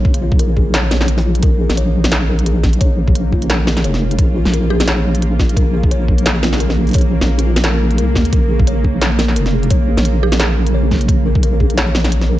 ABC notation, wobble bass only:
X:1
M:4/4
L:1/16
Q:"Swing 16ths" 1/4=174
K:Bbm
V:1 name="Wobble bass" clef=bass
B,,,3 B,,,12- B,,, | B,,,3 B,,,12- B,,, | B,,,12 F,,,4 | B,,,3 B,,,12- B,,, |
B,,,3 B,,,12- B,,, | B,,,3 B,,,8- B,,, C,,2 E,,2 | B,,,12 F,,,4 | B,,,3 B,,,12- B,,, |
B,,,3 B,,,12- B,,, |]